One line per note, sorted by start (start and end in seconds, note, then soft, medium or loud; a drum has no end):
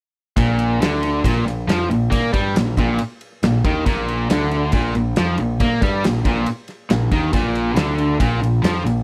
0.36 0.78 A#1 medium
0.36 0.80 A#2 medium
0.36 kick loud
0.36 ride medium
0.59 ride medium
0.79 1.21 D2 medium
0.79 1.24 D3 medium
0.79 snare loud
0.79 ride loud
1.03 ride medium
1.24 1.45 A#1 medium
1.24 1.46 A#2 loud
1.24 kick loud
1.24 ride loud
1.46 1.66 A#1 medium
1.46 1.64 A#2 medium
1.46 snare soft
1.46 ride medium
1.68 1.88 F2 loud
1.68 1.89 F3 loud
1.68 snare loud
1.68 ride loud
1.90 2.11 A#1 medium
1.90 2.08 A#2 medium
1.90 ride medium
2.11 2.32 A#2 medium
2.11 2.33 A#3 medium
2.11 kick medium
2.11 ride medium
2.33 2.54 G2 medium
2.33 2.55 G3 medium
2.33 kick loud
2.33 ride medium
2.56 2.76 A#1 medium
2.56 2.73 A#2 medium
2.56 snare loud
2.56 ride loud
2.77 2.98 A#1 medium
2.77 3.00 A#2 medium
2.77 kick loud
2.77 ride medium
2.98 ride medium
3.21 ride medium
3.43 3.63 A#1 medium
3.43 3.61 A#2 medium
3.43 snare loud
3.43 ride medium
3.64 3.85 D#2 medium
3.64 3.86 D#3 loud
3.64 kick loud
3.64 ride medium
3.86 4.27 A#1 loud
3.86 4.29 A#2 loud
3.86 kick medium
3.86 ride medium
4.08 ride medium
4.30 4.71 D2 medium
4.30 4.73 D3 medium
4.30 snare loud
4.30 ride loud
4.51 ride medium
4.72 4.93 A#1 medium
4.72 4.95 A#2 loud
4.72 kick loud
4.72 ride medium
4.95 5.15 A#1 medium
4.95 5.14 A#2 medium
4.95 ride medium
5.16 5.37 F2 medium
5.16 5.39 F3 loud
5.16 snare loud
5.16 ride medium
5.38 5.59 A#1 medium
5.38 5.57 A#2 medium
5.38 ride medium
5.60 5.81 A#2 loud
5.60 5.82 A#3 loud
5.60 kick medium
5.60 ride medium
5.81 6.02 G2 medium
5.81 6.04 G3 loud
5.81 kick loud
5.81 ride medium
6.04 6.24 A#1 medium
6.04 6.22 A#2 medium
6.04 snare loud
6.04 ride loud
6.25 6.45 A#1 medium
6.25 6.47 A#2 loud
6.25 kick loud
6.25 ride medium
6.46 ride medium
6.68 snare soft
6.68 ride medium
6.90 7.11 A#1 medium
6.90 7.08 A#2 medium
6.90 snare loud
6.90 ride medium
7.11 7.32 D#2 medium
7.11 7.33 D#3 loud
7.11 kick loud
7.11 ride medium
7.33 7.74 A#1 medium
7.33 7.76 A#2 loud
7.33 kick loud
7.33 ride medium
7.55 ride medium
7.76 8.17 D2 medium
7.76 8.19 D3 medium
7.76 snare loud
7.76 ride medium
7.98 ride medium
8.20 8.40 A#1 medium
8.20 8.41 A#2 loud
8.20 kick loud
8.20 ride medium
8.42 8.62 A#1 medium
8.42 8.59 A#2 medium
8.42 ride medium
8.63 8.84 F2 medium
8.63 8.84 F3 loud
8.63 snare loud
8.63 ride loud
8.85 9.03 A#1 medium
8.85 9.03 A#2 medium
8.85 ride medium